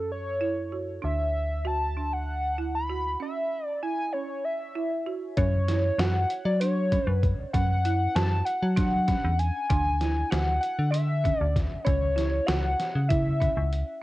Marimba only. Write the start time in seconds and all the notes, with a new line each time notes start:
Already playing: C#4
0.41 E4
0.72 F#4
1.02 D4
1.65 F#4
1.97 D4
2.58 E4
2.89 F#4
3.20 C#4
3.83 E4
4.14 C#4
4.75 E4
5.06 F#4
5.38 C#4
5.68 E4
5.99 F#4
6.61 D4
6.92 C#4
7.54 C#4
7.85 E4
8.16 F#4
8.76 D4
9.08 C#4
9.70 D4
10.01 E4
10.31 F#4
10.92 D4
11.24 C#4
11.85 C#4
12.16 E4
12.47 F#4
13.09 E4
13.40 C#4